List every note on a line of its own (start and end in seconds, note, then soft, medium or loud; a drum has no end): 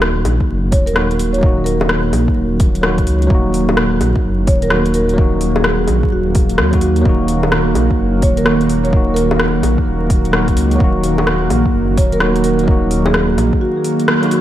0.00 0.25 D#1 medium
0.00 14.41 D#3 medium
0.00 0.91 F#3 loud
0.00 14.41 F#3 medium
0.00 0.93 A#3 medium
0.00 0.94 D#4 medium
0.00 0.95 F#4 loud
0.00 14.41 F#4 medium
0.00 cross-stick loud
0.07 14.41 A#3 medium
0.15 14.41 A#4 medium
0.25 0.39 A#1 medium
0.25 open hi-hat medium
0.25 low bongo soft
0.40 kick medium
0.49 0.74 F#1 medium
0.72 1.42 D#1 medium
0.72 0.84 C#5 medium
0.72 kick loud
0.72 open hi-hat medium
0.86 1.11 A#4 medium
0.86 closed hi-hat soft
0.94 1.37 F#3 medium
0.94 1.40 A#3 medium
0.94 1.41 D#4 medium
0.94 1.41 F#4 medium
0.94 cross-stick loud
1.11 closed hi-hat soft
1.19 open hi-hat medium
1.33 1.58 C#5 medium
1.33 closed hi-hat soft
1.38 2.79 F#3 loud
1.38 2.80 A#3 medium
1.43 2.12 D#1 loud
1.43 2.82 D#4 medium
1.43 2.83 F#4 loud
1.43 kick loud
1.64 2.04 A#4 medium
1.64 open hi-hat medium
1.81 low bongo medium
1.89 cross-stick loud
2.13 2.27 A#1 medium
2.13 open hi-hat medium
2.13 low bongo soft
2.28 kick medium
2.37 3.06 D#1 medium
2.60 kick loud
2.60 open hi-hat medium
2.75 closed hi-hat soft
2.81 3.26 F#3 medium
2.81 3.28 A#3 medium
2.81 3.28 D#4 medium
2.81 cross-stick loud
2.85 3.29 F#4 medium
2.98 kick medium
2.98 closed hi-hat soft
3.07 3.29 C#2 loud
3.07 open hi-hat medium
3.22 closed hi-hat soft
3.27 3.99 D#1 loud
3.27 4.67 F#3 loud
3.27 4.68 A#3 medium
3.27 kick loud
3.32 4.70 D#4 medium
3.32 4.71 F#4 loud
3.54 open hi-hat medium
3.69 low bongo medium
3.77 cross-stick loud
4.01 4.14 A#1 medium
4.01 open hi-hat medium
4.01 low bongo soft
4.16 kick medium
4.24 4.49 F#1 medium
4.47 5.17 D#1 medium
4.47 4.59 C#5 medium
4.47 kick loud
4.47 open hi-hat medium
4.62 4.87 A#4 medium
4.62 closed hi-hat soft
4.69 5.12 F#3 medium
4.69 5.15 A#3 medium
4.69 5.16 D#4 medium
4.69 5.16 F#4 medium
4.69 cross-stick loud
4.86 closed hi-hat soft
4.94 5.20 A#4 medium
4.94 open hi-hat medium
5.09 closed hi-hat soft
5.14 6.54 F#3 loud
5.14 6.56 A#3 medium
5.18 5.87 D#1 loud
5.18 6.57 D#4 medium
5.18 6.58 F#4 loud
5.18 kick loud
5.41 open hi-hat medium
5.56 6.10 G#4 medium
5.56 low bongo medium
5.64 cross-stick loud
5.88 6.02 A#1 medium
5.88 open hi-hat medium
5.88 low bongo soft
6.03 kick medium
6.11 6.60 D#1 medium
6.11 6.50 F#4 medium
6.35 kick loud
6.35 open hi-hat medium
6.49 closed hi-hat soft
6.58 7.04 D#2 loud
6.58 cross-stick loud
6.71 7.00 F#3 medium
6.71 7.03 A#3 medium
6.71 7.03 D#4 medium
6.71 7.04 F#4 loud
6.71 kick medium
6.71 closed hi-hat soft
6.81 7.29 F#4 medium
6.81 open hi-hat medium
6.96 closed hi-hat soft
7.01 8.42 F#3 loud
7.01 8.43 A#3 medium
7.05 7.74 D#1 loud
7.05 8.45 D#4 medium
7.05 kick loud
7.09 8.46 F#4 loud
7.28 open hi-hat medium
7.43 low bongo medium
7.52 cross-stick loud
7.75 7.89 A#1 medium
7.75 open hi-hat medium
7.75 low bongo soft
7.91 kick medium
7.98 8.24 F#1 medium
8.22 8.92 D#1 medium
8.22 8.34 C#5 medium
8.22 kick loud
8.22 open hi-hat medium
8.37 8.61 A#4 medium
8.37 closed hi-hat soft
8.44 8.87 F#3 medium
8.44 8.90 A#3 medium
8.44 8.91 D#4 medium
8.44 cross-stick loud
8.48 8.92 F#4 medium
8.61 closed hi-hat soft
8.69 open hi-hat medium
8.84 9.08 C#5 medium
8.84 closed hi-hat soft
8.89 10.29 F#3 loud
8.89 10.30 A#3 medium
8.93 9.62 D#1 loud
8.93 10.32 D#4 medium
8.93 10.33 F#4 loud
8.93 kick loud
9.14 9.54 A#4 loud
9.14 open hi-hat medium
9.31 low bongo medium
9.40 cross-stick loud
9.63 9.77 A#1 medium
9.63 open hi-hat medium
9.63 low bongo soft
9.78 kick medium
9.86 10.56 D#1 medium
10.10 kick loud
10.10 open hi-hat medium
10.25 closed hi-hat soft
10.31 10.75 F#3 medium
10.31 10.77 A#3 medium
10.31 10.78 D#4 medium
10.31 10.79 F#4 medium
10.31 cross-stick loud
10.48 kick medium
10.48 closed hi-hat soft
10.56 10.79 C#2 loud
10.56 open hi-hat medium
10.71 closed hi-hat soft
10.76 12.17 F#3 loud
10.76 12.18 A#3 medium
10.80 11.49 D#1 loud
10.80 12.19 D#4 medium
10.80 12.21 F#4 loud
10.80 kick loud
11.04 open hi-hat medium
11.18 low bongo medium
11.27 cross-stick loud
11.50 11.64 A#1 medium
11.50 open hi-hat medium
11.50 low bongo soft
11.65 kick medium
11.73 11.99 F#1 medium
11.97 12.67 D#1 medium
11.97 12.09 C#5 medium
11.97 kick loud
11.97 open hi-hat medium
12.12 12.37 A#4 loud
12.12 closed hi-hat soft
12.18 12.62 F#3 medium
12.18 12.65 A#3 medium
12.18 12.66 D#4 medium
12.18 12.66 F#4 medium
12.18 cross-stick loud
12.36 closed hi-hat soft
12.44 12.69 A#4 medium
12.44 open hi-hat medium
12.59 closed hi-hat soft
12.63 14.04 F#3 loud
12.63 14.05 A#3 medium
12.68 13.37 D#1 loud
12.68 14.07 D#4 medium
12.68 14.08 F#4 loud
12.68 kick loud
12.91 open hi-hat medium
13.06 13.60 G#4 medium
13.06 low bongo medium
13.14 cross-stick loud
13.38 13.51 A#1 medium
13.38 open hi-hat medium
13.38 low bongo soft
13.53 kick medium
13.61 14.00 F#4 loud
13.84 open hi-hat medium
14.00 closed hi-hat soft
14.08 cross-stick loud
14.22 14.41 F#3 medium
14.22 14.41 A#3 medium
14.22 14.41 D#4 medium
14.22 14.41 F#4 loud
14.22 closed hi-hat soft
14.31 14.41 F#4 medium
14.31 open hi-hat medium